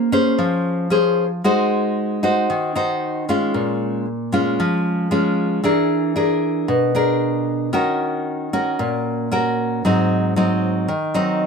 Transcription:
Already playing: A#3
0.12 C#4 G#4 C5
0.39 F3
0.90 C#4 G#4 C5
1.44 G#3 D#4 F#4 C5
2.23 D#4 F#4 C5
2.50 D#3
2.75 D#4 F#4 C5
3.29 G#3 C#4 F4
3.54 A#2
4.32 G#3 C#4 F4
4.60 F3
5.11 G#3 C#4 F4
5.64 E3 D4 G#4 A#4
6.16 D4 G#4 A#4
6.68 B2
6.95 D4 G#4 A#4
7.73 D#3 C#4 F#4 A#4
8.53 C#4 F#4 A#4
8.79 A#2
9.32 C#4 F#4 A#4
9.85 G#2 F#3 C4 D#4
10.36 F#3 C4 D#4
10.88 D#3
11.14 F#3 C4 D#4

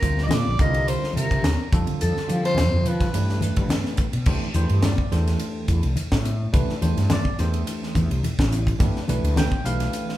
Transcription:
Already playing: A#4
0.01 D2 D3 G3 C4 F4 C5, kick, hi-hat pedal, ride, muted conga
0.18 snare
0.23 D5 D#5
0.29 A#2, snare, hi-hat pedal, ride, high conga
0.34 D5
0.47 A#1
0.59 C2 D3 G3 C4 F4 A#4 D#5, kick, hi-hat pedal, ride
0.74 ride
0.86 C5, hi-hat pedal, ride, muted conga
1.03 muted fretless electric bass stroke, snare
1.13 C3 A#4, hi-hat pedal, ride, high conga
1.31 C3, kick, ride
1.42 D#2, snare, hi-hat pedal, ride, muted conga, high conga
1.73 F2 D3 G3 C4 F4 A4, kick, hi-hat pedal, ride
1.87 ride
1.99 F2 A4, hi-hat pedal, ride, muted conga
2.17 muted fretless electric bass stroke, snare
2.27 D3 F3 G3 C4 F4 G4, hi-hat pedal, ride, muted conga
2.45 C5, snare, ride
2.55 F2, snare, hi-hat pedal, ride, high conga, low conga
2.73 F2
2.83 F3, hi-hat pedal, ride, low conga
2.87 B4
3.01 kick, snare, ride
3.12 G2 E3 A3 D4 G4 B4, hi-hat pedal, ride, muted conga
3.29 snare
3.41 hi-hat pedal, ride, high conga
3.56 G3, kick, ride
3.69 G2, snare, hi-hat pedal, ride, muted conga, high conga
3.85 snare
3.97 muted fretless electric bass stroke, kick, hi-hat pedal, ride
4.13 B2, ride
4.26 C2 E3 A3 D4 G4 C5, kick, crash, muted conga
4.54 E2 E3 A3 D4 G4 C5, hi-hat pedal, ride, muted conga, high conga
4.69 G2, ride
4.83 D5, snare, hi-hat pedal, ride, high conga
4.98 kick
5.11 E2 E3 A3 D4 G4 A4 C5, snare, hi-hat pedal, ride
5.27 snare, ride
5.40 hi-hat pedal, ride, muted conga
5.68 E2, kick, hi-hat pedal, ride
5.83 C2, ride
5.96 hi-hat pedal, ride, high conga
6.12 A2, kick, snare
6.25 hi-hat pedal, ride, muted conga
6.52 C2 E3 A3 D4 G4 B4, kick, hi-hat pedal, ride
6.69 muted fretless electric bass stroke, snare
6.82 E2 E3 A3 D4 G4 C5, hi-hat pedal, ride, muted conga, high conga
6.97 G2, snare, ride
7.10 D5, snare, hi-hat pedal, ride, high conga
7.25 kick
7.39 E2 E3 A3 D4 G4 C5, snare, hi-hat pedal, ride
7.54 ride
7.67 hi-hat pedal, ride, muted conga
7.83 snare
7.95 E2, kick, hi-hat pedal, ride, high conga
8.11 C2, ride
8.23 hi-hat pedal, ride, high conga, low conga
8.39 A1, kick, snare
8.51 hi-hat pedal, ride, muted conga
8.67 kick, ride
8.79 G1 E3 A3 D4 G4 B4, kick, hi-hat pedal, ride
8.94 muted fretless electric bass stroke, snare
9.08 B1 E3 A3 D4 G4 B4, hi-hat pedal, ride, muted conga, high conga
9.23 D2, ride
9.36 G5, snare, hi-hat pedal, ride, high conga
9.52 kick
9.65 B1 E3 A3 D4 G4 B4 F5, hi-hat pedal, ride
9.80 snare, ride
9.93 hi-hat pedal, ride, muted conga
10.09 snare

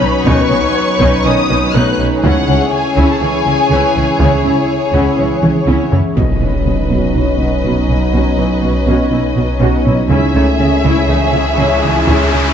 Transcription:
Already playing: F#3 C#4 D#4 B4 C#5 B5
0.01 B1 B2 C#4 D#4
0.26 B1 B2 D#3 B3 C#4 D#4 B4 C#6, taiko
0.50 B1 B2 C#4 D#4 B4
0.75 C#5
1.00 B1 B2 B3 C#4 D#4, taiko
1.24 B1 B2 D#3 C#4 D#4 D#5 D#6
1.49 B1 B2 C#4 D#4
1.74 B1 B2 A3 B3 C#4 D#4 B4 F#6
1.99 B1 B2 C#4 D#4
2.23 C#2 C#3 E3 C#4 E4 G#4 C#5 F#5, taiko
2.48 C#2 C#3 C#4 E4
2.74 G#5
2.97 C#2 C#3 C#4 E4, taiko
3.10 A5
3.21 C#2 C#3 E3 C#4 E4 G#5
3.46 C#2 C#3 E3 C#4 E4
3.70 C#2 C#3 C#4 E4 B4
3.95 C#2 C#3 E3 C#4 E4
4.20 C#2 C#3 E3 C#4 E4 C#5, taiko
4.44 C#2 C#3 C#4 E4
4.93 C#2 C#3 C#4 E4 F#5, taiko
5.18 C#2 C#3 E3 C#4 E4
5.42 C#2 C#3 E3 C#4 E4, taiko mid
5.67 C#2 C#3 C#4 E4, taiko high
5.92 C#2 C#3 E3 C#4 E4, taiko low
6.16 B1 B2 F#3 B3 C#4 D#4 F#4 B4 C#5 D#5, taiko, impact
6.41 B1 B2 C#4 E4 B4
6.65 B1 B2 C#4 F#4 B4
6.90 B1 B2 B3 C#4 F#4, taiko
7.14 B1 B2 C#4 D#4 E4
7.39 B1 B2 C#4 D#4 F#4
7.64 B1 B2 B3 C#4 F#4
7.88 B1 B2 C#4 D#4 E4
8.13 B1 B2 B3 C#4 F#4
8.37 B1 B2 C#4 E4 B4
8.62 B1 B2 C#4 F#4 B4
8.87 B1 B2 B3 C#4 F#4
9.11 B1 B2 C#4 D#4 E4
9.36 B1 B2 C#4 D#4 F#4
9.61 B1 B2 B3 C#4 F#4
9.85 B1 B2 C#4 D#4 E4
10.09 C#2 C#3 C#4 E4 G#4 C#5 E5, taiko, riser
10.34 C#2 C#3 A3 C#4 D#4 C#5
10.59 C#2 C#3 C#4 E4
10.84 C#2 C#3 C#4 E4, taiko
11.08 C#2 C#3 E3 C#4 D#4 G#4
11.33 C#2 C#3 E3 C#4 E4
11.58 C#2 C#3 C#4 E4
11.82 C#2 C#3 E3 C#4 D#4
12.06 C#2 C#3 C#4 E4, taiko
12.31 C#2 C#3 C#4 D#4

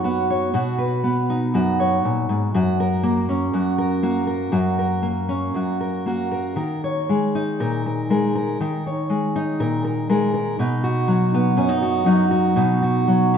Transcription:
Already playing: F#2 D#4 C#5
0.04 B3 F#4
0.30 C#5
0.54 B2 F#4
0.78 B4
1.04 B3
1.30 D#4
1.54 F#2 F#4
1.80 C#5
2.05 A#2
2.29 G#2
2.54 F#2 F#4
2.80 A#4
3.03 A#3
3.29 C#4
3.53 F#2 F#4
3.78 A#4
4.03 A#3 F#4
4.27 A#4
4.52 F#2 F#4
4.79 A#4
5.02 A#3
5.29 C#4
5.54 F#2 F#4
5.81 A#4
6.06 A#3 F#4
6.32 A#4
6.56 D#3 A#4
6.84 C#5
7.09 G#3
7.35 D#4
7.60 A#2 A#4
7.86 A#4
8.10 G#3 A#4
8.36 A#4
8.60 D#3 A#4
8.86 C#5
9.10 G#3
9.36 D#4
9.60 A#2 A#4
9.85 A#4
10.09 G#3 A#4
10.34 A#4
10.59 B2 D#4
10.84 F#4
11.08 F#3
11.34 B3
11.57 F#2 C#4
11.69 D#4
11.83 F#4
12.06 F#3 D#4
12.31 F#4
12.56 B2 D#4
12.82 F#4
13.07 F#3
13.34 B3

